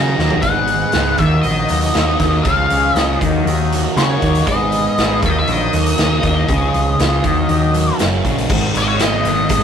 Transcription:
0.00 0.13 C#3 medium
0.00 0.17 D#3 medium
0.00 0.42 F#3 medium
0.00 0.44 F#3 medium
0.00 0.42 A#3 medium
0.00 0.44 A#3 medium
0.00 0.44 D#4 medium
0.00 1.17 D#4 medium
0.00 0.43 A#4 medium
0.00 0.39 A#5 medium
0.18 0.38 D#2 medium
0.18 0.44 D#3 medium
0.18 snare medium
0.30 floor tom medium
0.42 0.83 G#1 medium
0.42 1.20 G#2 medium
0.42 1.14 F#5 loud
0.42 kick loud
0.42 closed hi-hat medium
0.46 1.20 G#3 medium
0.46 1.20 B3 medium
0.46 1.20 B4 medium
0.67 closed hi-hat medium
0.92 1.14 C#2 medium
0.92 1.19 D#4 medium
0.92 snare medium
0.92 closed hi-hat medium
1.18 1.39 D#2 medium
1.18 2.19 D#3 medium
1.18 2.45 F#3 medium
1.18 2.45 A#3 medium
1.18 2.45 D#4 medium
1.18 2.45 A#4 medium
1.18 1.41 E5 medium
1.18 kick medium
1.18 closed hi-hat soft
1.41 1.64 A#1 medium
1.41 2.45 D#4 medium
1.41 2.47 D#5 medium
1.41 closed hi-hat medium
1.68 1.90 D#2 medium
1.68 2.45 F#3 medium
1.68 closed hi-hat medium
1.81 closed hi-hat medium
1.94 2.15 D#2 medium
1.94 2.45 A#3 medium
1.94 snare medium
1.94 closed hi-hat soft
2.19 2.40 D#2 medium
2.19 2.45 D#3 medium
2.19 kick medium
2.19 snare soft
2.19 closed hi-hat medium
2.44 2.65 C#2 medium
2.44 3.21 C#3 medium
2.44 3.21 F3 medium
2.44 3.21 G#3 medium
2.44 3.21 C#4 medium
2.44 3.21 G#4 medium
2.44 2.97 F5 medium
2.44 kick loud
2.44 closed hi-hat medium
2.70 2.90 C#2 medium
2.70 closed hi-hat medium
2.95 3.15 C#2 medium
2.95 3.21 F4 medium
2.95 3.16 D#5 medium
2.95 snare loud
2.95 closed hi-hat medium
3.21 3.41 D#2 medium
3.21 4.22 D#3 medium
3.21 4.47 F#3 medium
3.21 4.47 A#3 medium
3.21 6.47 D#4 medium
3.21 4.47 A#4 medium
3.21 kick medium
3.21 closed hi-hat medium
3.45 3.85 D#2 medium
3.45 4.47 D#4 medium
3.45 closed hi-hat medium
3.72 4.48 F#3 medium
3.72 closed hi-hat medium
3.96 4.16 C#3 medium
3.96 4.48 A#3 medium
3.96 4.44 C#5 medium
3.96 snare loud
3.96 closed hi-hat medium
4.22 4.42 D#2 medium
4.22 4.48 D#3 medium
4.22 kick medium
4.22 closed hi-hat medium
4.35 closed hi-hat medium
4.47 4.87 G#1 medium
4.47 5.23 G#2 medium
4.47 5.23 G#3 medium
4.47 5.23 B3 medium
4.47 5.22 B4 medium
4.47 5.18 D#5 loud
4.47 kick loud
4.47 closed hi-hat medium
4.72 closed hi-hat medium
4.98 5.17 G#1 medium
4.98 5.23 D#4 medium
4.98 snare medium
4.98 closed hi-hat medium
5.21 5.42 D#2 medium
5.21 6.22 D#3 medium
5.21 6.47 F#3 medium
5.21 6.47 A#3 medium
5.21 6.47 A#4 medium
5.21 kick medium
5.21 closed hi-hat soft
5.26 5.29 E5 medium
5.30 5.35 D#5 medium
5.39 5.49 E5 loud
5.47 5.68 A#1 medium
5.47 6.49 D#4 medium
5.47 closed hi-hat medium
5.52 7.98 D#5 medium
5.73 5.93 D#2 medium
5.73 6.49 F#3 medium
5.73 closed hi-hat medium
5.86 closed hi-hat medium
5.98 6.18 D#2 medium
5.98 6.48 A#3 medium
5.98 snare medium
5.98 closed hi-hat medium
6.23 6.43 D#2 medium
6.23 6.48 D#3 medium
6.23 kick medium
6.23 closed hi-hat medium
6.48 6.69 C#2 medium
6.48 7.23 C#3 medium
6.48 7.23 F3 medium
6.48 7.23 G#3 medium
6.48 7.23 C#4 medium
6.48 7.23 G#4 medium
6.48 kick loud
6.48 closed hi-hat medium
6.74 6.94 C#2 medium
6.74 closed hi-hat soft
6.99 7.19 C#2 medium
6.99 7.24 F4 medium
6.99 snare medium
6.99 closed hi-hat medium
7.22 7.44 D#2 medium
7.22 7.99 D#3 medium
7.22 8.48 F#3 medium
7.22 7.97 A#3 medium
7.22 7.98 D#4 medium
7.22 8.48 A#4 medium
7.22 kick medium
7.22 closed hi-hat medium
7.49 7.89 D#2 loud
7.49 7.99 D#4 medium
7.49 closed hi-hat medium
7.73 7.99 F#3 medium
7.73 closed hi-hat medium
7.99 8.20 F#1 medium
7.99 8.48 F#2 medium
7.99 8.49 A#3 medium
7.99 8.50 C#4 medium
7.99 snare loud
7.99 closed hi-hat medium
8.24 8.44 A#1 medium
8.24 8.49 C#3 medium
8.24 kick medium
8.24 closed hi-hat medium
8.38 closed hi-hat medium
8.49 8.71 G#1 medium
8.49 9.63 G#2 medium
8.49 9.63 D#3 medium
8.49 kick loud
8.49 crash loud
8.74 8.96 G#1 medium
8.74 9.63 D#4 medium
8.74 8.88 D#5 medium
8.74 closed hi-hat medium
8.88 9.00 C#5 medium
8.99 9.21 G#1 medium
8.99 9.50 B3 medium
8.99 9.63 D#5 medium
8.99 snare loud
8.99 closed hi-hat medium
9.14 9.63 G#3 medium
9.25 9.46 G#1 medium
9.25 9.63 D#3 medium
9.25 closed hi-hat medium
9.49 9.63 G#1 medium
9.49 9.63 B3 medium
9.49 kick loud
9.49 closed hi-hat medium

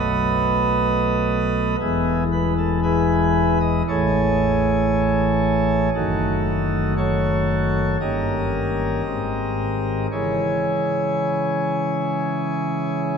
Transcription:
0.00 1.76 B1 medium
0.00 1.76 B2 medium
0.00 1.76 F#3 medium
0.00 1.76 A3 medium
0.00 1.76 B3 medium
0.00 1.76 A4 medium
0.00 1.76 B4 medium
0.00 1.76 D#5 loud
1.79 3.82 E1 medium
1.79 3.82 E2 medium
1.79 3.82 E3 medium
1.79 3.82 G#3 medium
1.79 2.23 B3 medium
1.79 2.24 E4 medium
1.79 2.24 G#4 loud
2.32 2.53 B4 loud
2.57 2.79 A4 loud
2.83 3.58 E4 medium
2.83 3.58 G#4 medium
2.83 3.58 B4 loud
3.60 3.82 D#5 loud
3.88 5.89 A1 medium
3.88 5.89 A2 medium
3.88 5.89 E3 medium
3.88 5.90 A3 medium
3.88 5.90 G#4 medium
3.88 5.89 A4 medium
3.88 5.89 C#5 loud
5.94 7.97 F#1 medium
5.94 7.96 F#2 medium
5.94 7.97 D#3 medium
5.94 7.96 A3 medium
5.94 6.94 D#4 medium
5.94 6.94 F#4 medium
5.94 6.94 A4 loud
6.97 7.98 F#4 medium
6.97 7.97 A4 medium
6.97 7.97 C#5 loud
8.00 9.01 G1 medium
8.00 9.02 G2 medium
8.00 9.02 D#3 soft
8.00 9.01 A#3 soft
8.00 9.02 C#4 soft
8.00 10.07 G4 medium
8.00 10.07 A#4 medium
8.00 10.07 D#5 medium
9.05 10.08 G#1 medium
9.05 10.08 G#2 medium
9.05 10.08 D#3 medium
9.05 10.08 G#3 soft
9.05 10.08 C4 soft
10.12 13.18 C#3 medium
10.12 13.18 E3 soft
10.12 13.18 G#3 soft
10.12 13.18 C#4 soft
10.12 13.18 E4 medium
10.12 13.18 G#4 medium
10.12 13.18 C#5 medium

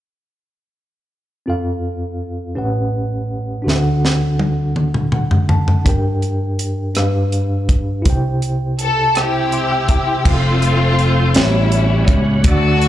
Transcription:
1.46 2.53 F2 soft
1.46 2.56 C4 soft
1.46 2.57 F4 soft
1.46 2.57 A4 soft
1.46 2.58 F5 medium
2.55 3.63 A1 soft
2.55 3.63 A2 soft
2.55 3.66 C#4 soft
2.55 3.66 G4 soft
2.55 3.67 B4 soft
2.55 3.68 F#5 soft
3.62 5.82 D2 soft
3.62 5.82 D3 medium
3.62 5.80 D4 medium
3.62 5.81 F#4 soft
3.67 5.83 A4 soft
3.67 3.75 E5 soft
3.67 snare soft
3.76 5.12 F#5 medium
4.05 snare soft
4.39 high tom soft
4.76 mid tom medium
4.94 mid tom soft
5.12 5.48 F#5 soft
5.12 mid tom medium
5.31 floor tom medium
5.49 5.83 A5 soft
5.49 floor tom medium
5.68 floor tom medium
5.85 6.92 G2 medium
5.85 6.93 D4 medium
5.85 6.94 G4 soft
5.85 6.97 A#4 soft
5.85 6.97 G5 medium
5.85 kick medium
5.85 closed hi-hat medium
6.22 closed hi-hat soft
6.59 closed hi-hat medium
6.94 8.02 G2 soft
6.94 8.05 D4 medium
6.94 8.03 G4 soft
6.94 8.06 B4 soft
6.94 8.07 F5 medium
6.94 cross-stick medium
6.94 closed hi-hat medium
7.32 closed hi-hat soft
7.69 kick medium
7.69 closed hi-hat soft
8.02 10.20 E4 medium
8.02 10.21 G4 medium
8.02 kick medium
8.02 closed hi-hat medium
8.06 10.22 C2 medium
8.06 10.22 C3 medium
8.06 10.22 C5 soft
8.06 9.51 G5 medium
8.42 closed hi-hat soft
8.79 9.14 A4 medium
8.79 closed hi-hat medium
9.15 10.22 C4 medium
9.15 10.22 E4 medium
9.15 10.26 G4 medium
9.15 cross-stick medium
9.15 closed hi-hat medium
9.52 9.70 E5 soft
9.52 9.70 C6 soft
9.52 closed hi-hat soft
9.71 9.89 G5 soft
9.71 9.88 E6 medium
9.88 10.07 D6 medium
9.88 kick medium
9.88 closed hi-hat soft
10.08 10.43 E5 soft
10.08 10.43 C6 soft
10.25 11.31 F1 medium
10.25 11.32 A3 medium
10.25 11.35 C4 medium
10.25 11.32 C4 medium
10.25 11.35 F4 soft
10.25 11.36 F4 medium
10.25 10.33 G4 soft
10.25 11.34 A4 medium
10.25 11.34 C5 soft
10.25 11.34 F5 soft
10.25 11.37 F5 medium
10.25 11.34 C6 medium
10.25 kick medium
10.25 crash medium
10.33 11.39 A4 soft
10.62 closed hi-hat soft
10.99 closed hi-hat soft
11.34 12.05 A1 medium
11.34 12.41 A2 medium
11.34 12.44 G3 soft
11.34 12.42 G3 soft
11.34 12.45 B3 soft
11.34 12.42 C#4 soft
11.34 12.10 E4 medium
11.34 12.44 F#4 soft
11.34 12.46 G4 soft
11.34 12.44 C#5 soft
11.34 12.46 C#5 medium
11.34 12.88 F#5 soft
11.34 12.44 B5 medium
11.34 snare medium
11.34 closed hi-hat medium
11.72 closed hi-hat soft
12.08 12.42 C#2 medium
12.08 kick medium
12.08 closed hi-hat soft
12.40 12.88 D3 medium
12.40 12.88 A3 medium
12.40 12.88 D4 medium
12.40 kick medium
12.40 closed hi-hat medium
12.44 12.88 D2 medium
12.44 12.88 A3 medium
12.44 12.88 D4 medium
12.44 12.88 F#4 soft
12.44 12.88 F#4 medium
12.44 12.88 A4 medium
12.44 12.88 D5 soft
12.44 12.88 D5 medium
12.44 12.88 D6 medium
12.82 closed hi-hat soft

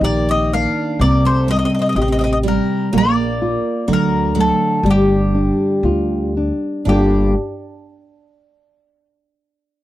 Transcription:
0.00 0.65 A#1 medium
0.00 0.97 D#3 medium
0.00 0.26 A#3 medium
0.00 0.50 G4 medium
0.04 0.29 D5 loud
0.29 0.51 C4 medium
0.29 0.54 D#5 medium
0.53 1.00 A#3 medium
0.53 0.98 D4 medium
0.53 1.02 F5 medium
0.99 1.62 C2 medium
0.99 2.89 C3 medium
0.99 1.23 A#3 medium
0.99 1.23 D5 loud
1.25 1.47 A3 medium
1.25 1.50 C5 medium
1.48 1.96 G3 soft
1.48 1.55 C4 medium
1.48 1.57 D#5 loud
1.56 1.62 C4 medium
1.56 1.64 D#5 medium
1.65 1.68 C4 medium
1.65 1.71 D#5 medium
1.70 1.76 C4 medium
1.74 1.79 D#5 medium
1.79 1.85 C4 medium
1.79 1.87 D#5 medium
1.86 1.91 C4 soft
1.86 1.94 D#5 medium
1.92 2.58 A1 medium
1.92 1.99 C4 medium
1.92 2.00 D#5 medium
1.98 2.07 C4 soft
1.98 2.44 G4 medium
1.98 2.07 D#5 medium
2.08 2.13 C4 medium
2.12 2.20 C4 medium
2.12 2.16 D#5 medium
2.19 2.26 C4 medium
2.19 2.23 D#5 medium
2.24 2.34 C4 medium
2.24 2.29 D#5 medium
2.33 2.37 D#5 medium
2.43 2.88 G3 medium
2.43 2.92 G3 medium
2.48 2.96 A#4 medium
2.93 3.55 A#1 loud
2.93 3.84 A#3 medium
2.93 3.85 A#3 medium
2.98 3.93 D5 loud
3.42 3.87 F4 medium
3.88 4.50 D2 medium
3.88 4.80 D3 medium
3.88 4.32 F#3 medium
3.93 4.39 A#4 loud
4.35 4.80 F#3 medium
4.35 4.82 A3 medium
4.40 4.87 A4 medium
4.83 5.48 G1 loud
4.83 6.32 D3 medium
4.83 6.83 G3 medium
4.91 6.34 G4 medium
5.35 5.83 D4 medium
5.83 6.50 D2 medium
5.83 6.34 F4 medium
6.37 6.85 D4 medium
6.85 7.33 G1 medium
6.85 7.33 G2 medium
6.85 7.34 D3 soft
6.85 7.34 G3 medium
6.85 7.34 A#3 soft
6.85 7.32 D4 medium
6.85 7.34 D4 soft
6.85 7.34 F4 medium
6.85 7.34 G4 medium

